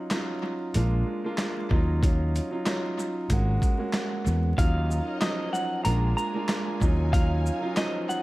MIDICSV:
0, 0, Header, 1, 6, 480
1, 0, Start_track
1, 0, Key_signature, -6, "minor"
1, 0, Tempo, 638298
1, 1524, Time_signature, 4, 2, 24, 8
1, 6186, End_track
2, 0, Start_track
2, 0, Title_t, "Clean electric guitar"
2, 0, Program_c, 0, 27
2, 3447, Note_on_c, 0, 77, 98
2, 3896, Note_off_c, 0, 77, 0
2, 3923, Note_on_c, 0, 75, 88
2, 4139, Note_off_c, 0, 75, 0
2, 4158, Note_on_c, 0, 78, 79
2, 4376, Note_off_c, 0, 78, 0
2, 4396, Note_on_c, 0, 82, 88
2, 4615, Note_off_c, 0, 82, 0
2, 4639, Note_on_c, 0, 82, 82
2, 5331, Note_off_c, 0, 82, 0
2, 5361, Note_on_c, 0, 77, 97
2, 5813, Note_off_c, 0, 77, 0
2, 5844, Note_on_c, 0, 75, 87
2, 6059, Note_off_c, 0, 75, 0
2, 6085, Note_on_c, 0, 78, 81
2, 6186, Note_off_c, 0, 78, 0
2, 6186, End_track
3, 0, Start_track
3, 0, Title_t, "String section"
3, 0, Program_c, 1, 48
3, 3437, Note_on_c, 1, 73, 80
3, 3438, Note_on_c, 1, 70, 77
3, 3438, Note_on_c, 1, 75, 99
3, 3439, Note_on_c, 1, 63, 86
3, 4391, Note_off_c, 1, 63, 0
3, 4391, Note_off_c, 1, 70, 0
3, 4391, Note_off_c, 1, 73, 0
3, 4391, Note_off_c, 1, 75, 0
3, 4398, Note_on_c, 1, 62, 80
3, 4399, Note_on_c, 1, 68, 71
3, 4399, Note_on_c, 1, 70, 71
3, 4399, Note_on_c, 1, 80, 99
3, 5114, Note_off_c, 1, 62, 0
3, 5114, Note_off_c, 1, 68, 0
3, 5114, Note_off_c, 1, 70, 0
3, 5129, Note_on_c, 1, 70, 76
3, 5129, Note_on_c, 1, 73, 75
3, 5130, Note_on_c, 1, 63, 82
3, 6186, Note_off_c, 1, 63, 0
3, 6186, Note_off_c, 1, 70, 0
3, 6186, Note_off_c, 1, 73, 0
3, 6186, Note_off_c, 1, 80, 0
3, 6186, End_track
4, 0, Start_track
4, 0, Title_t, "Grand piano"
4, 0, Program_c, 2, 0
4, 85, Note_on_c, 2, 54, 87
4, 89, Note_on_c, 2, 61, 83
4, 95, Note_on_c, 2, 63, 80
4, 100, Note_on_c, 2, 65, 99
4, 560, Note_on_c, 2, 56, 92
4, 564, Note_off_c, 2, 54, 0
4, 564, Note_off_c, 2, 65, 0
4, 564, Note_on_c, 2, 58, 84
4, 566, Note_off_c, 2, 61, 0
4, 569, Note_off_c, 2, 63, 0
4, 570, Note_on_c, 2, 62, 84
4, 575, Note_on_c, 2, 65, 101
4, 901, Note_off_c, 2, 56, 0
4, 903, Note_off_c, 2, 58, 0
4, 906, Note_off_c, 2, 62, 0
4, 908, Note_off_c, 2, 65, 0
4, 933, Note_on_c, 2, 56, 93
4, 938, Note_on_c, 2, 58, 92
4, 943, Note_on_c, 2, 62, 83
4, 948, Note_on_c, 2, 65, 104
4, 1283, Note_off_c, 2, 56, 0
4, 1284, Note_on_c, 2, 54, 97
4, 1285, Note_off_c, 2, 58, 0
4, 1287, Note_off_c, 2, 65, 0
4, 1288, Note_off_c, 2, 62, 0
4, 1289, Note_on_c, 2, 61, 88
4, 1294, Note_on_c, 2, 63, 92
4, 1298, Note_on_c, 2, 65, 102
4, 1506, Note_off_c, 2, 54, 0
4, 1509, Note_off_c, 2, 61, 0
4, 1511, Note_off_c, 2, 63, 0
4, 1513, Note_off_c, 2, 65, 0
4, 1517, Note_on_c, 2, 54, 93
4, 1523, Note_on_c, 2, 61, 86
4, 1526, Note_on_c, 2, 63, 80
4, 1532, Note_on_c, 2, 65, 99
4, 1859, Note_off_c, 2, 54, 0
4, 1862, Note_off_c, 2, 61, 0
4, 1864, Note_off_c, 2, 63, 0
4, 1867, Note_off_c, 2, 65, 0
4, 1882, Note_on_c, 2, 54, 90
4, 1887, Note_on_c, 2, 61, 81
4, 1893, Note_on_c, 2, 63, 83
4, 1897, Note_on_c, 2, 65, 103
4, 1985, Note_off_c, 2, 54, 0
4, 1991, Note_off_c, 2, 61, 0
4, 1996, Note_off_c, 2, 63, 0
4, 1996, Note_on_c, 2, 54, 92
4, 2001, Note_off_c, 2, 65, 0
4, 2002, Note_on_c, 2, 61, 83
4, 2007, Note_on_c, 2, 63, 86
4, 2012, Note_on_c, 2, 65, 103
4, 2480, Note_off_c, 2, 54, 0
4, 2483, Note_off_c, 2, 61, 0
4, 2485, Note_off_c, 2, 63, 0
4, 2488, Note_off_c, 2, 65, 0
4, 2490, Note_on_c, 2, 56, 102
4, 2495, Note_on_c, 2, 58, 88
4, 2500, Note_on_c, 2, 61, 86
4, 2505, Note_on_c, 2, 66, 107
4, 2826, Note_off_c, 2, 56, 0
4, 2828, Note_off_c, 2, 58, 0
4, 2831, Note_off_c, 2, 61, 0
4, 2833, Note_off_c, 2, 66, 0
4, 2840, Note_on_c, 2, 56, 92
4, 2846, Note_on_c, 2, 58, 86
4, 2851, Note_on_c, 2, 61, 81
4, 2856, Note_on_c, 2, 66, 102
4, 3393, Note_off_c, 2, 56, 0
4, 3396, Note_off_c, 2, 58, 0
4, 3398, Note_off_c, 2, 61, 0
4, 3401, Note_off_c, 2, 66, 0
4, 3440, Note_on_c, 2, 54, 96
4, 3445, Note_on_c, 2, 61, 83
4, 3449, Note_on_c, 2, 63, 84
4, 3454, Note_on_c, 2, 65, 94
4, 3886, Note_off_c, 2, 54, 0
4, 3889, Note_off_c, 2, 61, 0
4, 3891, Note_off_c, 2, 63, 0
4, 3894, Note_off_c, 2, 65, 0
4, 3922, Note_on_c, 2, 54, 89
4, 3927, Note_on_c, 2, 61, 84
4, 3932, Note_on_c, 2, 63, 82
4, 3938, Note_on_c, 2, 53, 102
4, 4397, Note_on_c, 2, 56, 95
4, 4401, Note_on_c, 2, 58, 86
4, 4403, Note_off_c, 2, 54, 0
4, 4405, Note_off_c, 2, 61, 0
4, 4407, Note_on_c, 2, 62, 85
4, 4408, Note_off_c, 2, 63, 0
4, 4411, Note_off_c, 2, 53, 0
4, 4412, Note_on_c, 2, 65, 99
4, 4739, Note_off_c, 2, 56, 0
4, 4741, Note_off_c, 2, 58, 0
4, 4744, Note_off_c, 2, 62, 0
4, 4747, Note_off_c, 2, 65, 0
4, 4767, Note_on_c, 2, 56, 98
4, 4772, Note_on_c, 2, 58, 91
4, 4777, Note_on_c, 2, 62, 85
4, 4782, Note_on_c, 2, 65, 108
4, 5120, Note_off_c, 2, 56, 0
4, 5122, Note_off_c, 2, 58, 0
4, 5122, Note_on_c, 2, 54, 99
4, 5125, Note_off_c, 2, 62, 0
4, 5126, Note_off_c, 2, 65, 0
4, 5128, Note_on_c, 2, 61, 91
4, 5132, Note_on_c, 2, 63, 95
4, 5137, Note_on_c, 2, 65, 102
4, 5345, Note_off_c, 2, 54, 0
4, 5348, Note_off_c, 2, 61, 0
4, 5350, Note_off_c, 2, 63, 0
4, 5353, Note_off_c, 2, 65, 0
4, 5356, Note_on_c, 2, 54, 102
4, 5361, Note_on_c, 2, 61, 89
4, 5366, Note_on_c, 2, 63, 86
4, 5370, Note_on_c, 2, 65, 100
4, 5699, Note_off_c, 2, 54, 0
4, 5701, Note_off_c, 2, 61, 0
4, 5704, Note_off_c, 2, 63, 0
4, 5706, Note_off_c, 2, 65, 0
4, 5720, Note_on_c, 2, 54, 96
4, 5725, Note_on_c, 2, 61, 79
4, 5730, Note_on_c, 2, 63, 83
4, 5735, Note_on_c, 2, 65, 107
4, 5825, Note_off_c, 2, 54, 0
4, 5831, Note_off_c, 2, 61, 0
4, 5835, Note_off_c, 2, 63, 0
4, 5836, Note_on_c, 2, 54, 94
4, 5842, Note_on_c, 2, 61, 83
4, 5846, Note_on_c, 2, 63, 90
4, 5852, Note_on_c, 2, 53, 111
4, 5877, Note_off_c, 2, 65, 0
4, 6186, Note_off_c, 2, 53, 0
4, 6186, Note_off_c, 2, 54, 0
4, 6186, Note_off_c, 2, 61, 0
4, 6186, Note_off_c, 2, 63, 0
4, 6186, End_track
5, 0, Start_track
5, 0, Title_t, "Fretless electric bass"
5, 0, Program_c, 3, 35
5, 570, Note_on_c, 3, 34, 102
5, 767, Note_off_c, 3, 34, 0
5, 1288, Note_on_c, 3, 39, 99
5, 1793, Note_off_c, 3, 39, 0
5, 2485, Note_on_c, 3, 32, 103
5, 2684, Note_off_c, 3, 32, 0
5, 3209, Note_on_c, 3, 40, 87
5, 3406, Note_off_c, 3, 40, 0
5, 3447, Note_on_c, 3, 39, 120
5, 3753, Note_off_c, 3, 39, 0
5, 4409, Note_on_c, 3, 34, 105
5, 4606, Note_off_c, 3, 34, 0
5, 5128, Note_on_c, 3, 39, 102
5, 5633, Note_off_c, 3, 39, 0
5, 6186, End_track
6, 0, Start_track
6, 0, Title_t, "Drums"
6, 79, Note_on_c, 9, 39, 94
6, 83, Note_on_c, 9, 38, 116
6, 84, Note_on_c, 9, 42, 67
6, 154, Note_off_c, 9, 39, 0
6, 158, Note_off_c, 9, 38, 0
6, 159, Note_off_c, 9, 42, 0
6, 559, Note_on_c, 9, 42, 96
6, 634, Note_off_c, 9, 42, 0
6, 1035, Note_on_c, 9, 39, 88
6, 1039, Note_on_c, 9, 38, 114
6, 1042, Note_on_c, 9, 42, 71
6, 1110, Note_off_c, 9, 39, 0
6, 1114, Note_off_c, 9, 38, 0
6, 1117, Note_off_c, 9, 42, 0
6, 1286, Note_on_c, 9, 36, 94
6, 1361, Note_off_c, 9, 36, 0
6, 1524, Note_on_c, 9, 36, 115
6, 1530, Note_on_c, 9, 42, 100
6, 1599, Note_off_c, 9, 36, 0
6, 1605, Note_off_c, 9, 42, 0
6, 1772, Note_on_c, 9, 42, 57
6, 1772, Note_on_c, 9, 82, 56
6, 1848, Note_off_c, 9, 42, 0
6, 1848, Note_off_c, 9, 82, 0
6, 2000, Note_on_c, 9, 39, 89
6, 2004, Note_on_c, 9, 38, 112
6, 2005, Note_on_c, 9, 42, 66
6, 2075, Note_off_c, 9, 39, 0
6, 2079, Note_off_c, 9, 38, 0
6, 2080, Note_off_c, 9, 42, 0
6, 2251, Note_on_c, 9, 82, 52
6, 2326, Note_off_c, 9, 82, 0
6, 2480, Note_on_c, 9, 42, 99
6, 2483, Note_on_c, 9, 36, 96
6, 2555, Note_off_c, 9, 42, 0
6, 2558, Note_off_c, 9, 36, 0
6, 2722, Note_on_c, 9, 36, 91
6, 2727, Note_on_c, 9, 42, 52
6, 2727, Note_on_c, 9, 82, 52
6, 2797, Note_off_c, 9, 36, 0
6, 2803, Note_off_c, 9, 42, 0
6, 2803, Note_off_c, 9, 82, 0
6, 2955, Note_on_c, 9, 39, 87
6, 2959, Note_on_c, 9, 38, 107
6, 2962, Note_on_c, 9, 42, 73
6, 3030, Note_off_c, 9, 39, 0
6, 3034, Note_off_c, 9, 38, 0
6, 3037, Note_off_c, 9, 42, 0
6, 3208, Note_on_c, 9, 82, 53
6, 3283, Note_off_c, 9, 82, 0
6, 3444, Note_on_c, 9, 36, 113
6, 3450, Note_on_c, 9, 42, 105
6, 3520, Note_off_c, 9, 36, 0
6, 3525, Note_off_c, 9, 42, 0
6, 3693, Note_on_c, 9, 82, 56
6, 3768, Note_off_c, 9, 82, 0
6, 3919, Note_on_c, 9, 39, 91
6, 3924, Note_on_c, 9, 38, 112
6, 3925, Note_on_c, 9, 42, 67
6, 3995, Note_off_c, 9, 39, 0
6, 3999, Note_off_c, 9, 38, 0
6, 4000, Note_off_c, 9, 42, 0
6, 4171, Note_on_c, 9, 82, 52
6, 4246, Note_off_c, 9, 82, 0
6, 4398, Note_on_c, 9, 42, 101
6, 4473, Note_off_c, 9, 42, 0
6, 4647, Note_on_c, 9, 82, 51
6, 4722, Note_off_c, 9, 82, 0
6, 4875, Note_on_c, 9, 39, 94
6, 4880, Note_on_c, 9, 38, 110
6, 4883, Note_on_c, 9, 42, 76
6, 4951, Note_off_c, 9, 39, 0
6, 4955, Note_off_c, 9, 38, 0
6, 4958, Note_off_c, 9, 42, 0
6, 5125, Note_on_c, 9, 36, 96
6, 5128, Note_on_c, 9, 82, 55
6, 5200, Note_off_c, 9, 36, 0
6, 5203, Note_off_c, 9, 82, 0
6, 5363, Note_on_c, 9, 36, 114
6, 5370, Note_on_c, 9, 42, 100
6, 5438, Note_off_c, 9, 36, 0
6, 5445, Note_off_c, 9, 42, 0
6, 5612, Note_on_c, 9, 82, 55
6, 5687, Note_off_c, 9, 82, 0
6, 5839, Note_on_c, 9, 39, 95
6, 5843, Note_on_c, 9, 38, 114
6, 5844, Note_on_c, 9, 42, 67
6, 5914, Note_off_c, 9, 39, 0
6, 5918, Note_off_c, 9, 38, 0
6, 5920, Note_off_c, 9, 42, 0
6, 6091, Note_on_c, 9, 82, 54
6, 6166, Note_off_c, 9, 82, 0
6, 6186, End_track
0, 0, End_of_file